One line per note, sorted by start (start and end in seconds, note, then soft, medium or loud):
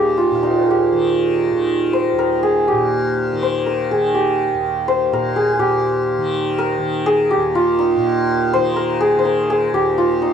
0.00 2.13 D#2 medium
0.00 0.31 A#2 medium
0.00 0.93 D#3 medium
0.00 0.42 D#4 medium
0.00 0.17 F4 medium
0.00 0.46 G4 medium
0.00 0.62 A#4 medium
0.00 0.58 C5 medium
0.17 0.35 F4 medium
0.31 2.72 A#2 soft
0.35 3.71 F4 medium
0.40 4.03 D#4 medium
0.40 0.72 G5 soft
0.40 0.76 G#5 soft
0.46 2.68 F5 soft
0.51 3.01 D5 soft
0.51 2.89 D#5 soft
0.59 2.18 A#4 soft
0.59 1.93 C5 soft
0.66 2.42 G#4 soft
0.70 2.49 G4 medium
0.93 1.52 D#3 medium
1.52 3.32 D#3 medium
1.93 3.42 C5 medium
2.13 4.54 D#2 medium
2.19 3.66 A#4 medium
2.43 2.74 G#4 medium
2.68 3.97 G4 medium
2.72 5.12 A#2 medium
3.32 3.93 D#3 medium
3.43 4.88 C5 medium
3.66 5.13 A#4 medium
3.91 6.18 D#3 medium
3.91 4.20 G#4 medium
4.14 5.42 G4 medium
4.54 7.37 D#2 medium
4.88 7.53 C5 medium
5.12 5.59 A#2 medium
5.12 6.58 A#4 medium
5.36 5.53 G#4 medium
5.53 5.65 G#4 medium
5.59 7.96 A#2 medium
5.59 7.12 G4 medium
6.18 6.79 D#3 medium
6.58 8.76 A#4 medium
6.79 8.56 D#3 medium
7.06 7.37 G#4 loud
7.31 9.06 G4 medium
7.37 9.73 D#2 medium
7.55 9.97 F4 medium
7.79 10.21 D#4 medium
7.96 10.32 A#2 medium
8.53 9.15 D#3 medium
8.53 9.18 C5 loud
8.76 9.25 A#4 medium
9.00 9.50 G#4 medium
9.15 10.33 D#3 medium
9.19 10.33 C5 medium
9.25 10.33 A#4 medium
9.50 9.80 G#4 loud
9.73 10.33 D#2 medium
9.73 10.33 G4 medium
9.98 10.33 F4 medium
10.22 10.33 D#4 medium